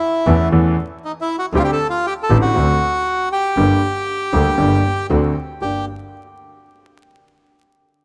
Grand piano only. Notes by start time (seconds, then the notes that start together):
0.26 E2 E3 A3 C#4 A4
0.52 E2 E3 A3 C#4 A4
1.54 D2 D3 A3 C4 G4
2.30 A1 A2 D3 A3 C4 G4
2.54 D2 D3 A3 C4 F#4
3.57 G1 G2 D3 G3 A#3 G4
4.32 D2 D3 G3 A#3 G4
4.58 G1 G2 D3 G3 A#3 G4
5.10 D2 D3 A3 C4 F#4
5.62 G2 A#3 D4 G4